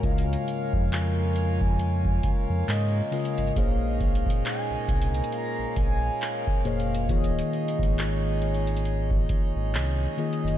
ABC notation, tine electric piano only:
X:1
M:4/4
L:1/16
Q:"Swing 16ths" 1/4=68
K:Bbm
V:1 name="Tine electric piano"
[D,A,FBe]6- [D,A,FBe] z6 z [D,A,FBf]2 | [B,,B,Acde]6- [B,,B,Acde] z6 z [B,,B,Acde]2 | [E,B,FAd]6- [E,B,FAd] z6 z [E,B,FAe]2 |]